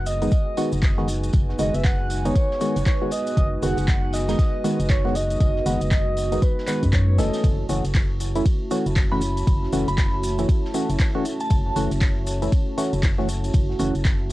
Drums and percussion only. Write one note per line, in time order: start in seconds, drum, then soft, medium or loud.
0.06 open hi-hat loud
0.06 tambourine medium
0.06 maracas loud
0.22 closed hi-hat soft
0.22 maracas medium
0.31 kick loud
0.31 closed hi-hat medium
0.31 tambourine medium
0.31 maracas soft
0.57 open hi-hat loud
0.57 tambourine medium
0.57 maracas medium
0.72 closed hi-hat medium
0.72 maracas soft
0.83 kick loud
0.83 snare loud
0.83 clap loud
0.83 closed hi-hat medium
0.83 tambourine medium
0.83 maracas soft
0.97 snare soft
1.08 open hi-hat loud
1.08 tambourine medium
1.08 maracas medium
1.24 closed hi-hat medium
1.24 maracas medium
1.33 kick loud
1.33 closed hi-hat medium
1.33 tambourine medium
1.33 maracas soft
1.49 snare soft
1.59 open hi-hat loud
1.59 tambourine medium
1.59 maracas medium
1.74 closed hi-hat medium
1.74 maracas medium
1.84 kick loud
1.84 snare loud
1.84 clap loud
1.84 closed hi-hat medium
1.84 tambourine medium
1.84 maracas soft
2.10 open hi-hat loud
2.10 tambourine medium
2.10 maracas medium
2.25 closed hi-hat medium
2.25 maracas medium
2.35 kick loud
2.35 closed hi-hat medium
2.35 tambourine medium
2.35 maracas soft
2.50 snare medium
2.60 open hi-hat loud
2.60 tambourine medium
2.60 maracas medium
2.76 closed hi-hat soft
2.76 closed hi-hat medium
2.76 maracas medium
2.86 kick loud
2.86 snare loud
2.86 clap loud
2.86 closed hi-hat medium
2.86 tambourine medium
2.86 maracas soft
3.11 open hi-hat loud
3.11 tambourine medium
3.11 maracas medium
3.27 closed hi-hat medium
3.27 maracas medium
3.37 kick loud
3.37 closed hi-hat medium
3.37 tambourine medium
3.37 maracas soft
3.62 open hi-hat loud
3.62 tambourine medium
3.62 maracas medium
3.77 closed hi-hat soft
3.77 closed hi-hat medium
3.77 maracas medium
3.87 kick loud
3.87 snare loud
3.87 clap loud
3.87 closed hi-hat medium
3.87 tambourine medium
4.12 snare loud
4.12 open hi-hat loud
4.12 tambourine medium
4.12 maracas medium
4.28 snare loud
4.28 closed hi-hat medium
4.28 tambourine medium
4.28 maracas soft
4.39 kick loud
4.39 snare loud
4.39 closed hi-hat medium
4.39 tambourine medium
4.39 maracas soft
4.64 open hi-hat loud
4.64 tambourine medium
4.64 maracas loud
4.80 closed hi-hat medium
4.80 maracas medium
4.89 kick loud
4.89 snare loud
4.89 clap loud
4.89 closed hi-hat medium
4.89 tambourine medium
5.05 snare soft
5.15 open hi-hat loud
5.15 tambourine medium
5.15 maracas medium
5.30 closed hi-hat medium
5.30 maracas medium
5.40 kick loud
5.40 closed hi-hat medium
5.40 tambourine medium
5.40 maracas soft
5.56 snare soft
5.66 open hi-hat loud
5.66 tambourine medium
5.66 maracas medium
5.81 closed hi-hat medium
5.81 maracas soft
5.91 kick loud
5.91 snare loud
5.91 clap loud
5.91 closed hi-hat medium
5.91 tambourine medium
5.91 maracas soft
6.17 open hi-hat loud
6.17 tambourine medium
6.17 maracas medium
6.32 closed hi-hat medium
6.32 maracas soft
6.42 kick loud
6.42 closed hi-hat medium
6.42 tambourine medium
6.42 maracas soft
6.58 snare medium
6.67 clap medium
6.67 open hi-hat loud
6.67 tambourine medium
6.67 maracas loud
6.83 kick medium
6.83 closed hi-hat medium
6.83 closed hi-hat soft
6.83 maracas medium
6.93 kick loud
6.93 clap loud
6.93 closed hi-hat medium
6.93 maracas soft
7.18 snare loud
7.18 open hi-hat loud
7.18 tambourine medium
7.18 maracas medium
7.33 snare loud
7.33 closed hi-hat medium
7.33 tambourine medium
7.33 maracas soft
7.44 kick loud
7.44 closed hi-hat medium
7.44 ride medium
7.44 tambourine medium
7.44 maracas soft
7.69 open hi-hat loud
7.69 tambourine medium
7.69 maracas loud
7.85 closed hi-hat medium
7.85 closed hi-hat soft
7.85 maracas soft
7.94 kick loud
7.94 snare loud
7.94 clap loud
7.94 closed hi-hat medium
7.94 ride medium
7.94 tambourine medium
7.94 maracas soft
8.20 open hi-hat loud
8.20 tambourine medium
8.20 maracas loud
8.35 closed hi-hat medium
8.35 maracas medium
8.46 kick loud
8.46 closed hi-hat medium
8.46 ride medium
8.46 tambourine medium
8.46 maracas soft
8.71 open hi-hat loud
8.71 tambourine medium
8.71 maracas loud
8.86 closed hi-hat medium
8.86 maracas soft
8.96 kick loud
8.96 snare loud
8.96 clap loud
8.96 closed hi-hat medium
8.96 ride medium
8.96 tambourine loud
8.96 maracas soft
9.12 snare soft
9.21 open hi-hat loud
9.21 tambourine medium
9.21 maracas medium
9.37 closed hi-hat medium
9.37 maracas medium
9.47 kick loud
9.47 closed hi-hat medium
9.47 ride medium
9.47 tambourine medium
9.47 maracas soft
9.63 snare soft
9.72 open hi-hat loud
9.72 tambourine medium
9.72 maracas loud
9.88 closed hi-hat medium
9.88 maracas medium
9.98 kick loud
9.98 snare loud
9.98 clap loud
9.98 closed hi-hat medium
9.98 ride medium
9.98 tambourine medium
9.98 maracas soft
10.23 open hi-hat loud
10.23 tambourine medium
10.23 maracas loud
10.39 closed hi-hat medium
10.39 maracas medium
10.49 kick loud
10.49 closed hi-hat medium
10.49 ride medium
10.49 tambourine medium
10.49 maracas soft
10.64 snare medium
10.74 open hi-hat loud
10.74 tambourine medium
10.74 maracas loud
10.90 closed hi-hat medium
10.90 closed hi-hat soft
10.90 maracas medium
10.99 kick loud
10.99 snare loud
10.99 clap loud
10.99 closed hi-hat medium
10.99 ride medium
10.99 tambourine loud
10.99 maracas soft
11.25 open hi-hat loud
11.25 tambourine medium
11.25 maracas medium
11.40 closed hi-hat medium
11.40 maracas medium
11.50 kick loud
11.50 closed hi-hat medium
11.50 ride medium
11.50 tambourine medium
11.50 maracas soft
11.76 open hi-hat loud
11.76 tambourine medium
11.76 maracas medium
11.91 closed hi-hat medium
11.91 closed hi-hat soft
11.91 maracas medium
12.01 kick loud
12.01 snare loud
12.01 clap loud
12.01 closed hi-hat medium
12.01 ride medium
12.01 tambourine medium
12.01 maracas soft
12.27 open hi-hat loud
12.27 tambourine medium
12.27 maracas loud
12.42 closed hi-hat medium
12.42 maracas medium
12.52 kick loud
12.52 closed hi-hat medium
12.52 ride medium
12.52 tambourine medium
12.52 maracas soft
12.78 open hi-hat loud
12.78 tambourine medium
12.78 maracas loud
12.93 closed hi-hat soft
12.93 maracas medium
13.02 kick loud
13.02 snare loud
13.02 clap loud
13.02 closed hi-hat medium
13.02 ride medium
13.02 tambourine loud
13.02 maracas soft
13.18 snare soft
13.29 open hi-hat loud
13.29 tambourine medium
13.29 maracas loud
13.44 closed hi-hat medium
13.44 maracas medium
13.53 kick loud
13.53 closed hi-hat medium
13.53 ride medium
13.53 tambourine medium
13.53 maracas soft
13.70 snare soft
13.79 open hi-hat loud
13.79 tambourine medium
13.79 maracas loud
13.95 closed hi-hat medium
13.95 maracas medium
14.05 kick loud
14.05 snare loud
14.05 clap loud
14.05 closed hi-hat medium
14.05 ride medium
14.05 tambourine medium
14.05 maracas soft